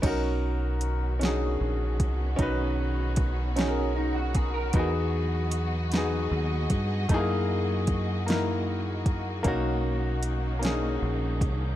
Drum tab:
CC |x-----|------|------|------|
HH |x-xx-x|x-xx-x|x-xx-x|x-xx-x|
SD |---o--|---o--|---o--|---o--|
BD |o----o|o-o--o|o----o|o-o--o|

CC |------|
HH |x-xx-x|
SD |---o--|
BD |o----o|